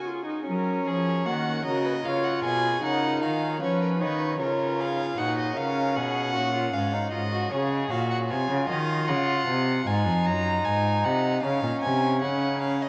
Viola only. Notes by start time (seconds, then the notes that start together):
0.06 F4
0.25 D#4
0.45 C#4
1.26 A#3
1.66 F#4
2.04 F4
2.83 D#4
3.61 C#4
4.01 D#4
4.40 F4
5.17 D#4
5.56 C#4